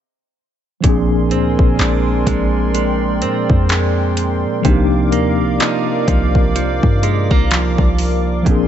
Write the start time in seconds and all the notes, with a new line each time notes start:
0.81 A#1 A#2 F3 A#3 A#4 D5 G#5 C6, kick, closed hi-hat
0.85 C4 D4
0.89 G#4
1.31 D2 C4, closed hi-hat
1.59 A#1, kick
1.79 A#1 G#3 C4 D4, clap, closed hi-hat
2.27 A#1 G#3, kick, closed hi-hat
2.74 G#3 G5, closed hi-hat
3.22 A#2 C4, closed hi-hat
3.50 F2, kick
3.69 G#3, clap, closed hi-hat
4.17 closed hi-hat
4.45 A#2
4.62 C2 C3 F3 A#3 A#4 D5 F5 D6, kick, closed hi-hat
4.66 D4 D#4
4.70 G4
5.12 D#2 A#3, closed hi-hat
5.41 C2
5.60 F3 A#3 D#4, clap, closed hi-hat
6.08 C2 F3, kick, closed hi-hat
6.35 kick
6.56 F3, closed hi-hat
6.83 G2, kick
7.03 G#3, closed hi-hat
7.31 C2 A#3, kick
7.51 F3, clap, closed hi-hat
7.78 C2, kick
7.98 open hi-hat
8.43 A#1 A#2 F3 A#3 D5 G#5 C6, kick, closed hi-hat
8.47 C4 D4
8.51 G#4